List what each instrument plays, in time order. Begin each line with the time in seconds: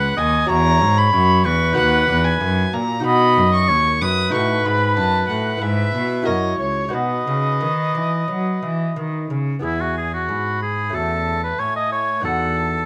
Already playing: cello C#2, lute C#4 G#4 B4, oboe B4, violin F#5
0.17 lute D#2, cello D#2, oboe D#5, violin G#5
0.45 lute C#4 F#4 C#5, oboe C#5, violin A#5
0.50 lute E2, cello E2
0.81 lute G#2, cello G#2
0.97 violin B5
1.13 lute F#2, cello F#2, oboe C#5
1.44 lute E2, cello E2, oboe B4, violin C#6
1.73 lute D#4 F#4 B4
1.77 lute D#2, cello D#2, violin F#5
2.08 lute E2, cello E2
2.24 violin G#5
2.41 lute F#2, cello F#2
2.73 lute A#2, cello A#2, violin A#5
3.00 lute D#4 F#4 B4
3.04 lute B2, cello B2, oboe D#5, violin B5
3.37 cello F#2, lute F#2
3.53 violin C#6
3.69 cello D#2, lute D#2, oboe C#5
4.01 cello F#2, lute F#2, oboe B4, violin D#6
4.30 cello A2, lute D#4 F#4 B4, violin C#6
4.34 lute A2
4.65 cello G#2, lute G#2, violin B5
4.97 lute F#2, cello F#2, violin A5
5.28 cello A2, lute A2, violin F#5
5.57 lute E4 B4, oboe B4
5.61 cello G#2, lute G#2, violin E5
5.95 cello B2, lute B2
6.22 lute E4 F#4 A#4, oboe C#5, violin D#5
6.27 lute F#2, cello F#2
6.59 cello C#2, violin C#5
6.88 lute D#4 F#4 B4
6.93 lute B2, cello B2, violin B4, oboe D#5
7.27 lute C#3, cello C#3
7.61 lute D#3, cello D#3
7.95 lute E3, cello E3
8.28 lute F#3, cello F#3
8.62 lute E3, cello E3
8.96 lute D#3, cello D#3
9.30 lute C#3, cello C#3
9.59 lute E2 B3 E4 G#4
9.64 cello E2, oboe E4, violin G#5
9.81 oboe F#4
9.97 oboe G#4
10.14 oboe F#4
10.29 lute G#2, cello G#2, violin B5
10.62 oboe G#4
10.89 lute A3 C#4 F#4
10.94 lute E2, cello E2, oboe A4, violin A5
11.43 oboe B4
11.59 lute A2, cello A2, oboe C#5, violin G#5
11.76 oboe D#5
11.92 oboe C#5
12.20 lute B3 D#4 F#4, violin F#5
12.24 lute E2, cello E2, oboe A4
12.57 violin A5